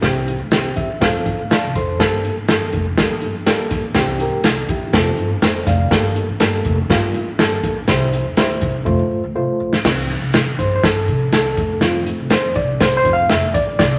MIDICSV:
0, 0, Header, 1, 5, 480
1, 0, Start_track
1, 0, Tempo, 491803
1, 28, Time_signature, 4, 2, 24, 8
1, 13653, End_track
2, 0, Start_track
2, 0, Title_t, "Reed electric piano"
2, 0, Program_c, 0, 4
2, 15, Note_on_c, 0, 52, 87
2, 19, Note_on_c, 0, 60, 76
2, 23, Note_on_c, 0, 67, 88
2, 381, Note_off_c, 0, 52, 0
2, 384, Note_off_c, 0, 60, 0
2, 386, Note_off_c, 0, 67, 0
2, 505, Note_on_c, 0, 60, 73
2, 506, Note_on_c, 0, 52, 80
2, 509, Note_on_c, 0, 67, 82
2, 746, Note_on_c, 0, 76, 62
2, 866, Note_off_c, 0, 52, 0
2, 866, Note_off_c, 0, 60, 0
2, 868, Note_off_c, 0, 67, 0
2, 969, Note_off_c, 0, 76, 0
2, 982, Note_on_c, 0, 53, 71
2, 984, Note_on_c, 0, 77, 62
2, 985, Note_on_c, 0, 67, 68
2, 987, Note_on_c, 0, 60, 68
2, 1043, Note_off_c, 0, 67, 0
2, 1044, Note_on_c, 0, 69, 77
2, 1344, Note_off_c, 0, 53, 0
2, 1346, Note_off_c, 0, 60, 0
2, 1375, Note_off_c, 0, 69, 0
2, 1430, Note_off_c, 0, 77, 0
2, 1468, Note_on_c, 0, 77, 65
2, 1472, Note_on_c, 0, 74, 48
2, 1473, Note_on_c, 0, 81, 75
2, 1692, Note_off_c, 0, 81, 0
2, 1694, Note_off_c, 0, 77, 0
2, 1696, Note_off_c, 0, 74, 0
2, 1716, Note_on_c, 0, 84, 67
2, 1719, Note_on_c, 0, 72, 67
2, 1721, Note_on_c, 0, 69, 52
2, 1933, Note_off_c, 0, 84, 0
2, 1941, Note_off_c, 0, 69, 0
2, 1943, Note_on_c, 0, 55, 78
2, 1951, Note_on_c, 0, 58, 70
2, 1952, Note_on_c, 0, 69, 92
2, 2167, Note_off_c, 0, 72, 0
2, 2303, Note_off_c, 0, 55, 0
2, 2307, Note_off_c, 0, 58, 0
2, 2308, Note_off_c, 0, 69, 0
2, 2425, Note_on_c, 0, 55, 70
2, 2425, Note_on_c, 0, 58, 67
2, 2428, Note_on_c, 0, 69, 89
2, 2784, Note_off_c, 0, 55, 0
2, 2784, Note_off_c, 0, 58, 0
2, 2785, Note_off_c, 0, 69, 0
2, 2903, Note_on_c, 0, 55, 79
2, 2909, Note_on_c, 0, 58, 63
2, 2913, Note_on_c, 0, 69, 76
2, 3262, Note_off_c, 0, 55, 0
2, 3265, Note_off_c, 0, 58, 0
2, 3267, Note_off_c, 0, 69, 0
2, 3381, Note_on_c, 0, 55, 86
2, 3384, Note_on_c, 0, 58, 77
2, 3394, Note_on_c, 0, 69, 88
2, 3740, Note_off_c, 0, 55, 0
2, 3742, Note_off_c, 0, 58, 0
2, 3747, Note_off_c, 0, 69, 0
2, 3856, Note_on_c, 0, 52, 73
2, 3859, Note_on_c, 0, 60, 72
2, 3864, Note_on_c, 0, 67, 85
2, 4100, Note_off_c, 0, 67, 0
2, 4110, Note_on_c, 0, 67, 60
2, 4110, Note_on_c, 0, 70, 59
2, 4218, Note_off_c, 0, 52, 0
2, 4219, Note_off_c, 0, 60, 0
2, 4331, Note_off_c, 0, 70, 0
2, 4332, Note_off_c, 0, 67, 0
2, 4344, Note_on_c, 0, 69, 68
2, 4568, Note_off_c, 0, 69, 0
2, 4586, Note_on_c, 0, 67, 60
2, 4589, Note_on_c, 0, 64, 52
2, 4823, Note_on_c, 0, 53, 75
2, 4826, Note_on_c, 0, 60, 70
2, 4828, Note_on_c, 0, 69, 94
2, 5036, Note_off_c, 0, 67, 0
2, 5038, Note_off_c, 0, 64, 0
2, 5180, Note_off_c, 0, 53, 0
2, 5182, Note_off_c, 0, 60, 0
2, 5182, Note_off_c, 0, 69, 0
2, 5302, Note_on_c, 0, 72, 57
2, 5306, Note_on_c, 0, 69, 53
2, 5526, Note_off_c, 0, 72, 0
2, 5529, Note_off_c, 0, 69, 0
2, 5533, Note_on_c, 0, 77, 69
2, 5541, Note_on_c, 0, 74, 55
2, 5767, Note_on_c, 0, 55, 84
2, 5772, Note_on_c, 0, 58, 74
2, 5773, Note_on_c, 0, 69, 81
2, 5989, Note_off_c, 0, 77, 0
2, 5993, Note_off_c, 0, 74, 0
2, 6131, Note_off_c, 0, 55, 0
2, 6133, Note_off_c, 0, 58, 0
2, 6134, Note_off_c, 0, 69, 0
2, 6244, Note_on_c, 0, 55, 75
2, 6251, Note_on_c, 0, 58, 76
2, 6253, Note_on_c, 0, 69, 83
2, 6609, Note_off_c, 0, 55, 0
2, 6613, Note_off_c, 0, 58, 0
2, 6613, Note_off_c, 0, 69, 0
2, 6728, Note_on_c, 0, 55, 74
2, 6736, Note_on_c, 0, 58, 73
2, 6737, Note_on_c, 0, 65, 83
2, 7091, Note_off_c, 0, 55, 0
2, 7095, Note_off_c, 0, 58, 0
2, 7095, Note_off_c, 0, 65, 0
2, 7213, Note_on_c, 0, 55, 74
2, 7219, Note_on_c, 0, 58, 70
2, 7224, Note_on_c, 0, 69, 100
2, 7573, Note_off_c, 0, 55, 0
2, 7576, Note_off_c, 0, 58, 0
2, 7579, Note_off_c, 0, 69, 0
2, 7697, Note_on_c, 0, 55, 81
2, 7704, Note_on_c, 0, 64, 69
2, 7704, Note_on_c, 0, 72, 92
2, 8055, Note_off_c, 0, 55, 0
2, 8059, Note_off_c, 0, 64, 0
2, 8059, Note_off_c, 0, 72, 0
2, 8176, Note_on_c, 0, 55, 82
2, 8176, Note_on_c, 0, 64, 80
2, 8180, Note_on_c, 0, 72, 86
2, 8534, Note_off_c, 0, 64, 0
2, 8535, Note_off_c, 0, 55, 0
2, 8536, Note_off_c, 0, 72, 0
2, 8640, Note_on_c, 0, 57, 82
2, 8646, Note_on_c, 0, 72, 84
2, 8647, Note_on_c, 0, 65, 67
2, 9007, Note_off_c, 0, 57, 0
2, 9010, Note_off_c, 0, 65, 0
2, 9010, Note_off_c, 0, 72, 0
2, 9131, Note_on_c, 0, 57, 72
2, 9133, Note_on_c, 0, 65, 66
2, 9133, Note_on_c, 0, 72, 79
2, 9492, Note_off_c, 0, 57, 0
2, 9494, Note_off_c, 0, 65, 0
2, 9494, Note_off_c, 0, 72, 0
2, 9607, Note_on_c, 0, 52, 58
2, 9616, Note_on_c, 0, 55, 49
2, 9617, Note_on_c, 0, 60, 64
2, 9929, Note_off_c, 0, 52, 0
2, 9934, Note_off_c, 0, 55, 0
2, 9934, Note_off_c, 0, 60, 0
2, 10334, Note_on_c, 0, 72, 86
2, 10486, Note_off_c, 0, 72, 0
2, 10498, Note_on_c, 0, 72, 68
2, 10570, Note_off_c, 0, 72, 0
2, 10583, Note_on_c, 0, 69, 87
2, 11049, Note_off_c, 0, 69, 0
2, 11060, Note_on_c, 0, 69, 83
2, 11527, Note_on_c, 0, 53, 52
2, 11533, Note_on_c, 0, 57, 50
2, 11541, Note_on_c, 0, 60, 60
2, 11546, Note_on_c, 0, 65, 70
2, 11553, Note_off_c, 0, 69, 0
2, 11765, Note_off_c, 0, 65, 0
2, 12037, Note_on_c, 0, 72, 93
2, 12217, Note_off_c, 0, 53, 0
2, 12221, Note_off_c, 0, 57, 0
2, 12225, Note_off_c, 0, 60, 0
2, 12252, Note_off_c, 0, 72, 0
2, 12256, Note_on_c, 0, 74, 90
2, 12503, Note_on_c, 0, 72, 95
2, 12505, Note_off_c, 0, 74, 0
2, 12648, Note_off_c, 0, 72, 0
2, 12659, Note_on_c, 0, 72, 105
2, 12725, Note_on_c, 0, 53, 55
2, 12734, Note_on_c, 0, 57, 43
2, 12737, Note_on_c, 0, 60, 50
2, 12809, Note_off_c, 0, 72, 0
2, 12816, Note_on_c, 0, 77, 105
2, 12949, Note_off_c, 0, 53, 0
2, 12954, Note_off_c, 0, 57, 0
2, 12955, Note_off_c, 0, 60, 0
2, 12967, Note_off_c, 0, 77, 0
2, 12976, Note_on_c, 0, 76, 86
2, 13218, Note_on_c, 0, 74, 100
2, 13227, Note_off_c, 0, 76, 0
2, 13447, Note_off_c, 0, 74, 0
2, 13459, Note_on_c, 0, 74, 94
2, 13653, Note_off_c, 0, 74, 0
2, 13653, End_track
3, 0, Start_track
3, 0, Title_t, "Upright bass"
3, 0, Program_c, 1, 32
3, 25, Note_on_c, 1, 36, 94
3, 337, Note_off_c, 1, 36, 0
3, 385, Note_on_c, 1, 38, 87
3, 489, Note_off_c, 1, 38, 0
3, 507, Note_on_c, 1, 36, 81
3, 714, Note_off_c, 1, 36, 0
3, 755, Note_on_c, 1, 34, 80
3, 958, Note_off_c, 1, 34, 0
3, 988, Note_on_c, 1, 29, 87
3, 1091, Note_off_c, 1, 29, 0
3, 1115, Note_on_c, 1, 41, 80
3, 1215, Note_off_c, 1, 41, 0
3, 1230, Note_on_c, 1, 40, 75
3, 1331, Note_off_c, 1, 40, 0
3, 1357, Note_on_c, 1, 38, 84
3, 1455, Note_off_c, 1, 38, 0
3, 1596, Note_on_c, 1, 36, 90
3, 1694, Note_off_c, 1, 36, 0
3, 1712, Note_on_c, 1, 41, 99
3, 1916, Note_off_c, 1, 41, 0
3, 1951, Note_on_c, 1, 31, 94
3, 2258, Note_off_c, 1, 31, 0
3, 2302, Note_on_c, 1, 33, 75
3, 2406, Note_off_c, 1, 33, 0
3, 2424, Note_on_c, 1, 31, 82
3, 2630, Note_off_c, 1, 31, 0
3, 2666, Note_on_c, 1, 29, 86
3, 2871, Note_off_c, 1, 29, 0
3, 3149, Note_on_c, 1, 31, 75
3, 3352, Note_off_c, 1, 31, 0
3, 3380, Note_on_c, 1, 33, 79
3, 3587, Note_off_c, 1, 33, 0
3, 3624, Note_on_c, 1, 34, 89
3, 3858, Note_off_c, 1, 34, 0
3, 3858, Note_on_c, 1, 36, 88
3, 4169, Note_off_c, 1, 36, 0
3, 4222, Note_on_c, 1, 38, 75
3, 4324, Note_off_c, 1, 38, 0
3, 4339, Note_on_c, 1, 36, 91
3, 4546, Note_off_c, 1, 36, 0
3, 4579, Note_on_c, 1, 34, 86
3, 4785, Note_off_c, 1, 34, 0
3, 4815, Note_on_c, 1, 29, 102
3, 5023, Note_off_c, 1, 29, 0
3, 5046, Note_on_c, 1, 31, 84
3, 5257, Note_off_c, 1, 31, 0
3, 5287, Note_on_c, 1, 29, 76
3, 5498, Note_off_c, 1, 29, 0
3, 5532, Note_on_c, 1, 29, 101
3, 5740, Note_off_c, 1, 29, 0
3, 5771, Note_on_c, 1, 31, 92
3, 6083, Note_off_c, 1, 31, 0
3, 6132, Note_on_c, 1, 33, 88
3, 6236, Note_off_c, 1, 33, 0
3, 6255, Note_on_c, 1, 31, 93
3, 6461, Note_off_c, 1, 31, 0
3, 6496, Note_on_c, 1, 29, 89
3, 6702, Note_off_c, 1, 29, 0
3, 6730, Note_on_c, 1, 31, 90
3, 6938, Note_off_c, 1, 31, 0
3, 6978, Note_on_c, 1, 33, 87
3, 7182, Note_off_c, 1, 33, 0
3, 7218, Note_on_c, 1, 31, 86
3, 7423, Note_off_c, 1, 31, 0
3, 7453, Note_on_c, 1, 34, 94
3, 7660, Note_off_c, 1, 34, 0
3, 7693, Note_on_c, 1, 36, 100
3, 8004, Note_off_c, 1, 36, 0
3, 8177, Note_on_c, 1, 38, 86
3, 8382, Note_off_c, 1, 38, 0
3, 8412, Note_on_c, 1, 36, 102
3, 8619, Note_off_c, 1, 36, 0
3, 8652, Note_on_c, 1, 29, 106
3, 8755, Note_off_c, 1, 29, 0
3, 8776, Note_on_c, 1, 41, 96
3, 8878, Note_off_c, 1, 41, 0
3, 8892, Note_on_c, 1, 40, 74
3, 8995, Note_off_c, 1, 40, 0
3, 9017, Note_on_c, 1, 38, 87
3, 9118, Note_off_c, 1, 38, 0
3, 9133, Note_on_c, 1, 36, 84
3, 9236, Note_off_c, 1, 36, 0
3, 9370, Note_on_c, 1, 34, 84
3, 9475, Note_off_c, 1, 34, 0
3, 9493, Note_on_c, 1, 33, 84
3, 9596, Note_off_c, 1, 33, 0
3, 9614, Note_on_c, 1, 36, 101
3, 9925, Note_off_c, 1, 36, 0
3, 9970, Note_on_c, 1, 36, 85
3, 10075, Note_off_c, 1, 36, 0
3, 10095, Note_on_c, 1, 48, 83
3, 10302, Note_off_c, 1, 48, 0
3, 10335, Note_on_c, 1, 31, 97
3, 10542, Note_off_c, 1, 31, 0
3, 10575, Note_on_c, 1, 31, 88
3, 10783, Note_off_c, 1, 31, 0
3, 10813, Note_on_c, 1, 48, 94
3, 11021, Note_off_c, 1, 48, 0
3, 11056, Note_on_c, 1, 36, 82
3, 11263, Note_off_c, 1, 36, 0
3, 11297, Note_on_c, 1, 29, 83
3, 11817, Note_off_c, 1, 29, 0
3, 11905, Note_on_c, 1, 36, 85
3, 12006, Note_off_c, 1, 36, 0
3, 12019, Note_on_c, 1, 41, 92
3, 12260, Note_on_c, 1, 36, 84
3, 12274, Note_off_c, 1, 41, 0
3, 12676, Note_off_c, 1, 36, 0
3, 12740, Note_on_c, 1, 29, 76
3, 12948, Note_off_c, 1, 29, 0
3, 12987, Note_on_c, 1, 29, 88
3, 13193, Note_off_c, 1, 29, 0
3, 13222, Note_on_c, 1, 34, 84
3, 13430, Note_off_c, 1, 34, 0
3, 13462, Note_on_c, 1, 36, 113
3, 13653, Note_off_c, 1, 36, 0
3, 13653, End_track
4, 0, Start_track
4, 0, Title_t, "Muted upright bass strokes"
4, 1471, Note_on_c, 9, 29, 43
4, 1569, Note_off_c, 9, 29, 0
4, 3026, Note_on_c, 9, 29, 47
4, 3124, Note_off_c, 9, 29, 0
4, 13653, End_track
5, 0, Start_track
5, 0, Title_t, "Drums"
5, 23, Note_on_c, 9, 42, 64
5, 24, Note_on_c, 9, 38, 86
5, 27, Note_on_c, 9, 36, 92
5, 121, Note_off_c, 9, 38, 0
5, 121, Note_off_c, 9, 42, 0
5, 124, Note_off_c, 9, 36, 0
5, 271, Note_on_c, 9, 42, 67
5, 369, Note_off_c, 9, 42, 0
5, 501, Note_on_c, 9, 42, 80
5, 505, Note_on_c, 9, 38, 106
5, 598, Note_off_c, 9, 42, 0
5, 602, Note_off_c, 9, 38, 0
5, 744, Note_on_c, 9, 42, 68
5, 750, Note_on_c, 9, 36, 92
5, 842, Note_off_c, 9, 42, 0
5, 848, Note_off_c, 9, 36, 0
5, 988, Note_on_c, 9, 36, 95
5, 991, Note_on_c, 9, 38, 109
5, 993, Note_on_c, 9, 42, 92
5, 1086, Note_off_c, 9, 36, 0
5, 1089, Note_off_c, 9, 38, 0
5, 1091, Note_off_c, 9, 42, 0
5, 1229, Note_on_c, 9, 36, 74
5, 1231, Note_on_c, 9, 42, 62
5, 1327, Note_off_c, 9, 36, 0
5, 1328, Note_off_c, 9, 42, 0
5, 1474, Note_on_c, 9, 42, 89
5, 1475, Note_on_c, 9, 38, 100
5, 1571, Note_off_c, 9, 42, 0
5, 1573, Note_off_c, 9, 38, 0
5, 1712, Note_on_c, 9, 36, 84
5, 1714, Note_on_c, 9, 42, 69
5, 1810, Note_off_c, 9, 36, 0
5, 1811, Note_off_c, 9, 42, 0
5, 1951, Note_on_c, 9, 36, 97
5, 1953, Note_on_c, 9, 38, 96
5, 1953, Note_on_c, 9, 42, 73
5, 2048, Note_off_c, 9, 36, 0
5, 2050, Note_off_c, 9, 42, 0
5, 2051, Note_off_c, 9, 38, 0
5, 2191, Note_on_c, 9, 42, 71
5, 2288, Note_off_c, 9, 42, 0
5, 2422, Note_on_c, 9, 42, 80
5, 2426, Note_on_c, 9, 38, 116
5, 2519, Note_off_c, 9, 42, 0
5, 2523, Note_off_c, 9, 38, 0
5, 2660, Note_on_c, 9, 42, 65
5, 2668, Note_on_c, 9, 36, 91
5, 2758, Note_off_c, 9, 42, 0
5, 2765, Note_off_c, 9, 36, 0
5, 2904, Note_on_c, 9, 36, 95
5, 2904, Note_on_c, 9, 38, 109
5, 2905, Note_on_c, 9, 42, 89
5, 3001, Note_off_c, 9, 38, 0
5, 3002, Note_off_c, 9, 36, 0
5, 3003, Note_off_c, 9, 42, 0
5, 3138, Note_on_c, 9, 42, 61
5, 3236, Note_off_c, 9, 42, 0
5, 3382, Note_on_c, 9, 42, 93
5, 3383, Note_on_c, 9, 38, 102
5, 3479, Note_off_c, 9, 42, 0
5, 3481, Note_off_c, 9, 38, 0
5, 3613, Note_on_c, 9, 38, 34
5, 3617, Note_on_c, 9, 42, 80
5, 3621, Note_on_c, 9, 36, 94
5, 3711, Note_off_c, 9, 38, 0
5, 3714, Note_off_c, 9, 42, 0
5, 3719, Note_off_c, 9, 36, 0
5, 3850, Note_on_c, 9, 42, 73
5, 3851, Note_on_c, 9, 38, 100
5, 3857, Note_on_c, 9, 36, 91
5, 3948, Note_off_c, 9, 38, 0
5, 3948, Note_off_c, 9, 42, 0
5, 3955, Note_off_c, 9, 36, 0
5, 4095, Note_on_c, 9, 42, 66
5, 4193, Note_off_c, 9, 42, 0
5, 4331, Note_on_c, 9, 42, 98
5, 4335, Note_on_c, 9, 38, 122
5, 4428, Note_off_c, 9, 42, 0
5, 4432, Note_off_c, 9, 38, 0
5, 4571, Note_on_c, 9, 42, 67
5, 4577, Note_on_c, 9, 36, 99
5, 4669, Note_off_c, 9, 42, 0
5, 4675, Note_off_c, 9, 36, 0
5, 4813, Note_on_c, 9, 36, 92
5, 4816, Note_on_c, 9, 38, 115
5, 4818, Note_on_c, 9, 42, 101
5, 4911, Note_off_c, 9, 36, 0
5, 4914, Note_off_c, 9, 38, 0
5, 4915, Note_off_c, 9, 42, 0
5, 5048, Note_on_c, 9, 42, 53
5, 5146, Note_off_c, 9, 42, 0
5, 5291, Note_on_c, 9, 42, 89
5, 5292, Note_on_c, 9, 38, 105
5, 5388, Note_off_c, 9, 42, 0
5, 5390, Note_off_c, 9, 38, 0
5, 5528, Note_on_c, 9, 38, 37
5, 5531, Note_on_c, 9, 36, 107
5, 5532, Note_on_c, 9, 42, 81
5, 5626, Note_off_c, 9, 38, 0
5, 5629, Note_off_c, 9, 36, 0
5, 5630, Note_off_c, 9, 42, 0
5, 5769, Note_on_c, 9, 38, 101
5, 5769, Note_on_c, 9, 42, 66
5, 5770, Note_on_c, 9, 36, 89
5, 5866, Note_off_c, 9, 42, 0
5, 5867, Note_off_c, 9, 36, 0
5, 5867, Note_off_c, 9, 38, 0
5, 6011, Note_on_c, 9, 42, 69
5, 6109, Note_off_c, 9, 42, 0
5, 6245, Note_on_c, 9, 42, 94
5, 6250, Note_on_c, 9, 38, 106
5, 6343, Note_off_c, 9, 42, 0
5, 6347, Note_off_c, 9, 38, 0
5, 6487, Note_on_c, 9, 42, 72
5, 6493, Note_on_c, 9, 36, 103
5, 6584, Note_off_c, 9, 42, 0
5, 6591, Note_off_c, 9, 36, 0
5, 6732, Note_on_c, 9, 36, 96
5, 6737, Note_on_c, 9, 38, 113
5, 6739, Note_on_c, 9, 42, 93
5, 6829, Note_off_c, 9, 36, 0
5, 6835, Note_off_c, 9, 38, 0
5, 6836, Note_off_c, 9, 42, 0
5, 6970, Note_on_c, 9, 42, 54
5, 7068, Note_off_c, 9, 42, 0
5, 7211, Note_on_c, 9, 42, 94
5, 7213, Note_on_c, 9, 38, 105
5, 7309, Note_off_c, 9, 42, 0
5, 7311, Note_off_c, 9, 38, 0
5, 7451, Note_on_c, 9, 42, 83
5, 7452, Note_on_c, 9, 36, 87
5, 7549, Note_off_c, 9, 36, 0
5, 7549, Note_off_c, 9, 42, 0
5, 7686, Note_on_c, 9, 42, 73
5, 7687, Note_on_c, 9, 38, 93
5, 7691, Note_on_c, 9, 36, 81
5, 7784, Note_off_c, 9, 42, 0
5, 7785, Note_off_c, 9, 38, 0
5, 7788, Note_off_c, 9, 36, 0
5, 7935, Note_on_c, 9, 42, 69
5, 8033, Note_off_c, 9, 42, 0
5, 8168, Note_on_c, 9, 42, 92
5, 8172, Note_on_c, 9, 38, 124
5, 8266, Note_off_c, 9, 42, 0
5, 8270, Note_off_c, 9, 38, 0
5, 8406, Note_on_c, 9, 42, 77
5, 8413, Note_on_c, 9, 36, 104
5, 8504, Note_off_c, 9, 42, 0
5, 8511, Note_off_c, 9, 36, 0
5, 8650, Note_on_c, 9, 36, 93
5, 8748, Note_off_c, 9, 36, 0
5, 9493, Note_on_c, 9, 38, 77
5, 9591, Note_off_c, 9, 38, 0
5, 9613, Note_on_c, 9, 36, 82
5, 9613, Note_on_c, 9, 38, 100
5, 9614, Note_on_c, 9, 49, 77
5, 9710, Note_off_c, 9, 38, 0
5, 9711, Note_off_c, 9, 36, 0
5, 9711, Note_off_c, 9, 49, 0
5, 9854, Note_on_c, 9, 42, 64
5, 9952, Note_off_c, 9, 42, 0
5, 10088, Note_on_c, 9, 42, 93
5, 10092, Note_on_c, 9, 38, 121
5, 10185, Note_off_c, 9, 42, 0
5, 10189, Note_off_c, 9, 38, 0
5, 10332, Note_on_c, 9, 42, 63
5, 10336, Note_on_c, 9, 36, 84
5, 10429, Note_off_c, 9, 42, 0
5, 10434, Note_off_c, 9, 36, 0
5, 10574, Note_on_c, 9, 36, 94
5, 10575, Note_on_c, 9, 38, 104
5, 10577, Note_on_c, 9, 42, 85
5, 10672, Note_off_c, 9, 36, 0
5, 10673, Note_off_c, 9, 38, 0
5, 10674, Note_off_c, 9, 42, 0
5, 10815, Note_on_c, 9, 36, 78
5, 10816, Note_on_c, 9, 42, 58
5, 10912, Note_off_c, 9, 36, 0
5, 10913, Note_off_c, 9, 42, 0
5, 11052, Note_on_c, 9, 42, 104
5, 11054, Note_on_c, 9, 38, 107
5, 11150, Note_off_c, 9, 42, 0
5, 11152, Note_off_c, 9, 38, 0
5, 11294, Note_on_c, 9, 36, 99
5, 11295, Note_on_c, 9, 42, 76
5, 11392, Note_off_c, 9, 36, 0
5, 11393, Note_off_c, 9, 42, 0
5, 11526, Note_on_c, 9, 42, 72
5, 11527, Note_on_c, 9, 38, 94
5, 11624, Note_off_c, 9, 38, 0
5, 11624, Note_off_c, 9, 42, 0
5, 11775, Note_on_c, 9, 42, 73
5, 11872, Note_off_c, 9, 42, 0
5, 12006, Note_on_c, 9, 42, 84
5, 12010, Note_on_c, 9, 38, 114
5, 12104, Note_off_c, 9, 42, 0
5, 12108, Note_off_c, 9, 38, 0
5, 12249, Note_on_c, 9, 42, 60
5, 12258, Note_on_c, 9, 36, 90
5, 12347, Note_off_c, 9, 42, 0
5, 12355, Note_off_c, 9, 36, 0
5, 12496, Note_on_c, 9, 36, 90
5, 12498, Note_on_c, 9, 38, 115
5, 12499, Note_on_c, 9, 42, 95
5, 12594, Note_off_c, 9, 36, 0
5, 12595, Note_off_c, 9, 38, 0
5, 12597, Note_off_c, 9, 42, 0
5, 12736, Note_on_c, 9, 42, 54
5, 12738, Note_on_c, 9, 36, 78
5, 12833, Note_off_c, 9, 42, 0
5, 12836, Note_off_c, 9, 36, 0
5, 12974, Note_on_c, 9, 42, 85
5, 12976, Note_on_c, 9, 38, 99
5, 13072, Note_off_c, 9, 42, 0
5, 13073, Note_off_c, 9, 38, 0
5, 13220, Note_on_c, 9, 42, 85
5, 13221, Note_on_c, 9, 36, 100
5, 13318, Note_off_c, 9, 42, 0
5, 13319, Note_off_c, 9, 36, 0
5, 13461, Note_on_c, 9, 36, 90
5, 13461, Note_on_c, 9, 42, 78
5, 13462, Note_on_c, 9, 38, 94
5, 13559, Note_off_c, 9, 36, 0
5, 13559, Note_off_c, 9, 38, 0
5, 13559, Note_off_c, 9, 42, 0
5, 13653, End_track
0, 0, End_of_file